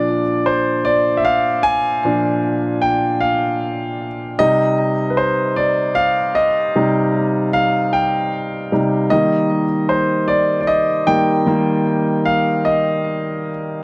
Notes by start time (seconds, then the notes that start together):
Already playing: A#2 F3 D4 D5
0.46 C5
0.85 D5
1.17 E5
1.25 F5
1.63 G#5
2.05 A#2 F3 D4
2.82 G5
3.20 F5
4.39 C3 G3 D#4 D#5
5.10 B4
5.17 C5
5.56 D5
5.95 F5
6.35 D#5
6.76 C3 G3 D#4
7.53 F5
7.93 G5
8.72 C3 G3 D#4
9.10 D#3 G3 A#3 D#5
9.89 C5
10.28 D5
10.61 D5
10.67 D#5
11.07 D#3 G3 A#3 G5
11.46 D#3 G3 A#3
12.25 F5
12.65 D#5